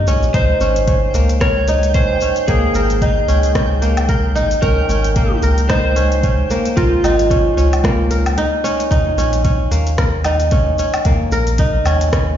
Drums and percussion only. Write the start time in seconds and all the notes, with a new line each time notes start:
0.07 shaker
0.23 shaker
0.34 kick, closed hi-hat, shaker
0.61 shaker
0.76 closed hi-hat, shaker
0.88 kick, closed hi-hat, shaker
1.14 closed hi-hat, shaker
1.29 closed hi-hat, shaker
1.41 kick, cross-stick, closed hi-hat, shaker
1.68 closed hi-hat, shaker
1.83 closed hi-hat, shaker
1.94 kick, closed hi-hat, shaker
2.21 shaker
2.36 closed hi-hat, shaker
2.48 kick, closed hi-hat, shaker
2.75 shaker
2.90 closed hi-hat, shaker
3.02 kick, closed hi-hat, shaker
3.29 closed hi-hat, shaker
3.43 closed hi-hat, shaker
3.55 kick, cross-stick, closed hi-hat, shaker
3.82 closed hi-hat, shaker
3.97 closed hi-hat, low woodblock, shaker
4.09 kick, closed hi-hat, shaker
4.36 shaker
4.51 closed hi-hat, shaker
4.62 kick, closed hi-hat, shaker
4.90 shaker
5.04 closed hi-hat, shaker
5.16 kick, closed hi-hat, shaker
5.42 closed hi-hat, shaker
5.58 closed hi-hat, shaker
5.70 kick, cross-stick, closed hi-hat, shaker
5.96 closed hi-hat, shaker
6.12 closed hi-hat, shaker
6.23 kick, closed hi-hat, shaker
6.50 shaker
6.66 closed hi-hat, shaker
6.77 kick, closed hi-hat, shaker
7.04 closed hi-hat, low woodblock, shaker
7.19 closed hi-hat, shaker
7.30 kick, closed hi-hat, shaker
7.58 closed hi-hat, shaker
7.73 closed hi-hat, low woodblock, shaker
7.84 kick, cross-stick, closed hi-hat, shaker
8.11 closed hi-hat, shaker
8.26 closed hi-hat, low woodblock, shaker
8.38 closed hi-hat, shaker
8.65 closed hi-hat, shaker
8.80 closed hi-hat, shaker
8.91 kick, closed hi-hat, shaker
9.18 shaker
9.33 closed hi-hat, shaker
9.45 kick, closed hi-hat, shaker
9.72 closed hi-hat, shaker
9.87 closed hi-hat, shaker
9.98 kick, cross-stick, closed hi-hat, shaker
10.24 closed hi-hat, low woodblock, shaker
10.40 closed hi-hat, shaker
10.51 kick, closed hi-hat, shaker
10.79 shaker
10.94 closed hi-hat, low woodblock, shaker
11.05 kick, closed hi-hat, shaker
11.32 shaker
11.47 closed hi-hat, shaker
11.58 kick, closed hi-hat, shaker
11.86 closed hi-hat, low woodblock, shaker
12.01 closed hi-hat, shaker
12.13 kick, cross-stick, closed hi-hat, shaker